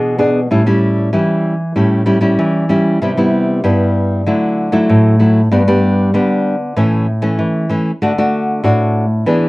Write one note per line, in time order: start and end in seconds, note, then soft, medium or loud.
0.00 0.48 B2 medium
0.00 0.14 B3 medium
0.00 0.14 D4 medium
0.00 0.14 G#4 medium
0.18 0.39 B3 medium
0.18 0.39 D4 medium
0.18 0.39 G#4 medium
0.51 1.10 A2 medium
0.51 0.62 G3 soft
0.51 0.62 C#4 medium
0.51 0.62 E4 medium
0.67 1.09 G3 medium
0.67 1.09 C#4 medium
0.67 1.09 E4 medium
1.13 1.73 E3 medium
1.13 1.54 G3 soft
1.13 1.54 C#4 medium
1.13 1.54 E4 medium
1.76 2.36 A2 medium
1.76 2.02 G3 medium
1.76 2.02 C#4 medium
1.76 2.03 E4 medium
2.06 2.17 G3 medium
2.06 2.18 C#4 medium
2.06 2.18 E4 medium
2.21 2.64 G3 medium
2.21 2.64 C#4 medium
2.21 2.64 E4 medium
2.39 2.98 E3 medium
2.69 2.98 G3 medium
2.69 2.99 C#4 medium
2.69 2.99 E4 medium
3.02 3.61 C3 medium
3.02 3.11 G3 medium
3.02 3.11 B3 medium
3.02 3.11 E4 medium
3.17 3.59 G3 medium
3.17 3.59 B3 medium
3.17 3.60 E4 medium
3.64 4.23 G2 medium
3.64 4.21 G3 medium
3.64 4.22 B3 medium
3.64 4.22 E4 medium
4.26 4.86 D3 medium
4.26 4.68 F#3 soft
4.26 4.69 A3 medium
4.26 4.69 E4 medium
4.72 5.15 F#3 medium
4.72 5.15 A3 medium
4.72 5.15 E4 medium
4.89 5.49 A2 medium
5.19 5.40 F#3 medium
5.19 5.40 A3 medium
5.19 5.41 E4 medium
5.51 6.11 G2 medium
5.51 5.61 G3 medium
5.51 5.61 B3 medium
5.51 5.61 D4 medium
5.68 6.10 G3 medium
5.68 6.10 B3 medium
5.68 6.10 D4 medium
6.14 6.74 D3 medium
6.14 6.55 G3 medium
6.14 6.55 B3 medium
6.14 6.55 D4 medium
6.76 7.36 A2 medium
6.76 7.06 E3 medium
6.76 7.06 A3 medium
6.76 7.06 C#4 medium
7.22 7.38 E3 medium
7.22 7.65 A3 medium
7.22 7.65 C#4 medium
7.39 7.69 E3 medium
7.70 7.90 E3 medium
7.70 7.91 A3 medium
7.70 7.91 C#4 medium
8.02 8.61 D3 medium
8.02 8.11 A3 medium
8.02 8.12 D4 medium
8.02 8.12 F#4 medium
8.18 8.60 A3 medium
8.18 8.60 D4 medium
8.18 8.60 F#4 medium
8.64 9.24 A2 medium
8.64 9.05 A3 medium
8.64 9.05 D4 medium
8.64 9.05 F#4 medium
9.26 9.49 E3 medium
9.26 9.49 B3 medium
9.26 9.49 D4 medium
9.26 9.49 G#4 medium